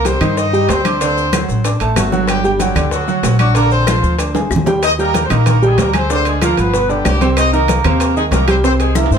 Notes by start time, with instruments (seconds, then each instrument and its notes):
Already playing: upright bass C2
0.05 grand piano G3 G4 G5, horn section C4 C5, high bongo, high conga, high timbale, low timbale, maracas
0.20 upright bass G2, grand piano D#3 D#4 D#5, high conga, low conga, high timbale, claves, maracas
0.37 horn section D#4 D#5, high bongo, high conga, maracas
0.53 grand piano G3 G4 G5, high conga, maracas
0.68 upright bass D2, horn section C4 C5, high bongo, low bongo, high conga, high timbale, low timbale, maracas
0.85 grand piano D4 D5 D6, high conga, high timbale, claves, maracas
1.01 grand piano D3 D4 D5, horn section C4 C5, high bongo, high conga, high timbale, maracas
1.17 high bongo, high conga, maracas
1.33 grand piano F#3 F#4 F#5, high bongo, high conga, high timbale, low timbale, claves, maracas
1.48 upright bass A1, high bongo, high conga, maracas
1.65 grand piano D4 D5 D6, high bongo, high conga, high timbale, maracas
1.80 upright bass A1, grand piano A3 A4 A5, high conga, high timbale, maracas
1.96 upright bass G1, horn section F#3 F#4, high bongo, low bongo, high conga, high timbale, low timbale, claves, maracas
2.12 grand piano F#3 F#4 F#5, high bongo, high conga, maracas
2.27 horn section G3 G4, high bongo, high conga, high timbale, claves, maracas
2.44 grand piano G3 G4 G5, horn section G3 G4, high conga, maracas
2.59 grand piano F#3 F#4 F#5, horn section G3 G4, high bongo, high conga, high timbale, low timbale, maracas
2.75 upright bass D2, grand piano D3 D4 D5, high conga, low conga, high timbale, claves, maracas
2.90 horn section F#3 F#4, high bongo, high conga, maracas
3.08 grand piano F#3 F#4 F#5, high conga, maracas
3.23 upright bass A#1, high bongo, low bongo, high conga, high timbale, low timbale, maracas
3.38 horn section F#3 F#4, grand piano D4 D5 D6, high conga, high timbale, claves, maracas
3.55 grand piano D3 D4 D5, horn section A#3 A#4, high bongo, high timbale, maracas
3.71 horn section C4 C5, high bongo, high conga, maracas
3.87 grand piano F3 F4 F5, high bongo, high conga, high timbale, low timbale, claves, maracas
4.03 upright bass D2, high bongo, high conga, maracas
4.19 grand piano D4 D5 D6, high bongo, high conga, high timbale, maracas
4.35 grand piano G#3 G#4 G#5, high bongo, high conga, high timbale, maracas
4.50 upright bass D#2, low bongo, claves, maracas
4.56 low conga
4.66 grand piano G3 G4 G5, low bongo, low conga, low timbale, maracas
4.83 horn section D#4 D#5, high bongo, high conga, high timbale, claves, maracas
4.99 grand piano G3 G4 G5, horn section A#3 A#4, high conga, maracas
5.14 high bongo, high conga, high timbale, low timbale, maracas
5.25 horn section C5
5.30 upright bass A#1, grand piano D#3 D#4 D#5, horn section A#3 A#4, high conga, low conga, high timbale, claves, maracas
5.46 high bongo, high conga, low conga, high timbale, maracas
5.62 grand piano G3 G4 G5, horn section G#3 G#4, high conga, maracas
5.78 upright bass D2, horn section A#3 A#4, high bongo, low bongo, high conga, high timbale, low timbale, maracas
5.94 grand piano G#3 G#4 G#5, horn section C4 C5, high conga, high timbale, claves, maracas
6.10 grand piano D3 D4 D5, horn section C4 C5, high bongo, maracas
6.25 horn section G#3 G#4, high bongo, high conga, high timbale, maracas
6.42 grand piano F3 F4 F5, horn section A#3 A#4, high bongo, high conga, high timbale, low timbale, claves, maracas
6.57 upright bass G1, horn section B3 B4, high bongo, high conga, high timbale, maracas
6.73 grand piano B2 B3 B4, high bongo, high conga, maracas
6.89 grand piano D3 D4 D5, horn section G3 G4, high conga, maracas
7.05 upright bass C2, horn section G3 G4, high bongo, low bongo, high conga, high timbale, low timbale, claves, maracas
7.21 grand piano C3 C4 C5, high bongo, high conga, high timbale, maracas
7.37 horn section D#4 D#5, high bongo, high conga, high timbale, claves, maracas
7.53 grand piano D#3 D#4 D#5, horn section A#3 A#4, high conga, maracas
7.68 high bongo, high conga, high timbale, low timbale, maracas
7.84 upright bass D#2, grand piano C3 C4 C5, horn section A#3 A#4, high conga, low conga, high timbale, claves, maracas
8.00 high bongo, high conga, high timbale, maracas
8.16 grand piano D#3 D#4 D#5, horn section G#3 G#4, high conga, maracas
8.31 upright bass C2, horn section A#3 A#4, high bongo, low bongo, high conga, high timbale, low timbale, maracas
8.48 grand piano G3 G4 G5, horn section C4 C5, high conga, high timbale, claves, maracas
8.64 grand piano C3 C4 C5, horn section C4 C5, high bongo, high conga, maracas
8.80 horn section G#3 G#4, high bongo, high conga, high timbale, maracas
8.95 grand piano E3 E4 E5, horn section A#3 A#4, high bongo, high conga, high timbale, claves, maracas
9.06 high timbale
9.11 upright bass G2, horn section C4 C5, high bongo, high conga, maracas